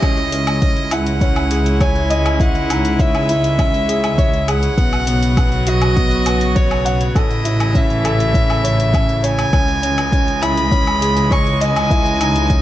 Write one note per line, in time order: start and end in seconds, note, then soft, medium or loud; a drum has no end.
0.00 4.75 C#2 medium
0.00 4.73 G#3 medium
0.00 4.73 C#4 medium
0.00 0.20 C#4 medium
0.00 4.74 E4 medium
0.00 0.94 D#5 loud
0.00 kick loud
0.00 closed hi-hat soft
0.00 low woodblock medium
0.18 closed hi-hat soft
0.32 0.49 C#4 medium
0.32 closed hi-hat medium
0.47 closed hi-hat soft
0.47 low woodblock medium
0.62 0.90 C#4 medium
0.62 kick loud
0.62 closed hi-hat soft
0.76 closed hi-hat soft
0.91 1.20 E4 medium
0.91 1.83 F#5 loud
0.91 closed hi-hat medium
0.91 low woodblock medium
1.06 closed hi-hat soft
1.21 1.50 C#4 medium
1.21 kick loud
1.21 closed hi-hat soft
1.36 closed hi-hat soft
1.36 low woodblock medium
1.51 1.79 G#4 medium
1.51 closed hi-hat medium
1.66 closed hi-hat soft
1.80 2.09 C#5 loud
1.80 2.42 G#5 medium
1.80 kick loud
1.80 closed hi-hat soft
1.80 low woodblock medium
1.96 closed hi-hat soft
2.10 2.39 D#5 loud
2.10 closed hi-hat medium
2.26 closed hi-hat soft
2.26 low woodblock medium
2.40 2.57 E4 medium
2.40 3.01 F#5 medium
2.40 kick loud
2.40 closed hi-hat soft
2.55 closed hi-hat soft
2.70 2.87 D#4 medium
2.70 closed hi-hat medium
2.70 low woodblock medium
2.85 closed hi-hat soft
2.99 3.28 C#4 medium
2.99 4.50 E5 loud
2.99 kick loud
2.99 closed hi-hat soft
3.15 closed hi-hat soft
3.15 low woodblock medium
3.29 3.57 E4 medium
3.29 closed hi-hat medium
3.44 closed hi-hat soft
3.59 3.87 C#4 medium
3.59 kick loud
3.59 closed hi-hat soft
3.59 low woodblock medium
3.74 closed hi-hat soft
3.88 4.17 G#4 medium
3.88 closed hi-hat medium
4.04 closed hi-hat soft
4.04 low woodblock medium
4.18 4.46 C#5 loud
4.18 kick loud
4.18 closed hi-hat soft
4.34 closed hi-hat soft
4.48 4.76 G#4 medium
4.48 5.69 F#5 loud
4.48 closed hi-hat medium
4.48 low woodblock medium
4.63 closed hi-hat soft
4.78 7.12 B1 medium
4.78 12.62 C#3 medium
4.78 7.13 F#3 medium
4.78 7.13 B3 medium
4.78 4.95 B3 medium
4.78 7.13 F#4 loud
4.78 kick loud
4.78 closed hi-hat soft
4.93 closed hi-hat soft
4.93 low woodblock medium
5.07 5.24 B3 medium
5.07 closed hi-hat medium
5.23 closed hi-hat soft
5.37 5.66 B3 medium
5.37 kick loud
5.37 closed hi-hat soft
5.37 low woodblock medium
5.52 closed hi-hat soft
5.67 5.95 F#4 medium
5.67 6.58 D#5 loud
5.67 closed hi-hat medium
5.82 closed hi-hat soft
5.82 low woodblock medium
5.96 6.25 B3 medium
5.96 kick loud
5.96 closed hi-hat soft
6.11 closed hi-hat soft
6.26 6.54 B4 medium
6.26 closed hi-hat medium
6.26 low woodblock medium
6.41 closed hi-hat soft
6.55 6.84 C#5 loud
6.55 7.18 C#5 medium
6.55 kick loud
6.55 closed hi-hat soft
6.71 closed hi-hat soft
6.71 low woodblock medium
6.85 7.14 F#5 loud
6.85 closed hi-hat medium
7.01 closed hi-hat soft
7.15 9.50 A1 loud
7.15 9.51 E3 medium
7.15 9.51 A3 medium
7.15 9.51 E4 medium
7.15 7.32 A4 medium
7.15 7.77 D#5 medium
7.15 kick loud
7.15 closed hi-hat soft
7.15 low woodblock medium
7.31 closed hi-hat soft
7.45 7.62 E4 medium
7.45 closed hi-hat medium
7.60 closed hi-hat soft
7.60 low woodblock medium
7.74 8.03 C#4 medium
7.74 9.26 E5 loud
7.74 kick loud
7.74 closed hi-hat soft
7.90 closed hi-hat soft
8.04 8.33 A4 medium
8.04 closed hi-hat medium
8.04 low woodblock medium
8.20 closed hi-hat soft
8.34 8.62 C#4 medium
8.34 kick loud
8.34 closed hi-hat soft
8.50 closed hi-hat soft
8.50 low woodblock medium
8.64 8.81 C#5 medium
8.64 closed hi-hat medium
8.80 closed hi-hat soft
8.94 9.11 C#4 medium
8.94 kick loud
8.94 closed hi-hat soft
8.94 low woodblock medium
9.09 closed hi-hat soft
9.23 9.51 C#5 medium
9.23 10.43 G#5 loud
9.23 closed hi-hat medium
9.39 closed hi-hat soft
9.39 low woodblock medium
9.53 12.62 C#2 loud
9.53 12.62 E3 medium
9.53 12.62 G#3 medium
9.53 9.70 C#4 medium
9.53 12.62 D#5 medium
9.53 kick loud
9.53 closed hi-hat soft
9.53 low woodblock medium
9.68 closed hi-hat soft
9.83 10.00 C#4 medium
9.83 closed hi-hat medium
9.98 closed hi-hat soft
9.98 low woodblock medium
10.12 10.41 C#4 medium
10.12 kick loud
10.12 closed hi-hat soft
10.28 closed hi-hat soft
10.42 10.70 E4 medium
10.42 11.33 B5 loud
10.42 closed hi-hat medium
10.42 low woodblock medium
10.57 closed hi-hat soft
10.71 11.00 C#4 medium
10.71 kick loud
10.71 closed hi-hat soft
10.87 closed hi-hat soft
10.87 low woodblock medium
11.01 11.30 G#4 medium
11.01 closed hi-hat medium
11.17 closed hi-hat soft
11.31 11.59 C#5 loud
11.31 11.62 C#6 loud
11.31 kick loud
11.31 closed hi-hat soft
11.31 low woodblock medium
11.47 closed hi-hat soft
11.61 11.89 D#5 loud
11.61 12.62 G#5 loud
11.61 closed hi-hat medium
11.76 closed hi-hat soft
11.76 low woodblock medium
11.91 12.08 E4 medium
11.91 kick loud
11.91 closed hi-hat soft
12.06 closed hi-hat soft
12.21 12.37 D#4 medium
12.21 closed hi-hat medium
12.21 low woodblock medium
12.36 closed hi-hat soft
12.50 12.62 C#4 medium
12.50 kick loud
12.50 closed hi-hat soft